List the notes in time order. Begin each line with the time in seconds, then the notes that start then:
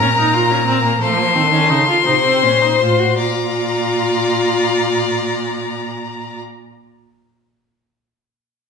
Already playing: A#4 A#5
0.01 A#2 C#4
0.18 D#4
0.34 F4
0.51 C#4
0.67 C4
0.84 A#3
1.01 F3 A3 A4 C6
1.18 A#3
1.35 D#3 C4
1.53 C#4
1.70 C#3 D#4
1.88 F4
2.05 C3 D#4 C5
2.25 C4
2.43 A#2 C#4
2.62 D#4
2.80 A2 F4
3.00 F#4
3.18 A#2 F4 D5 A#5